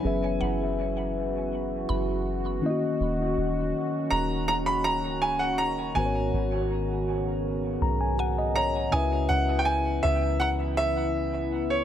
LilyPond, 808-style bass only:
\new Staff \with { instrumentName = "808-style bass" } { \clef bass \time 4/4 \key cis \dorian \tempo 4 = 81 fis,,8 fis,,2 fis,,4 r8 | dis,,8 dis,,8 r8 dis,,4~ dis,,16 cis,,8~ cis,,32 dis,,8~ dis,,32 | gis,,8 gis,,2 b,,4. | cis,8 cis,4 cis,2~ cis,8 | }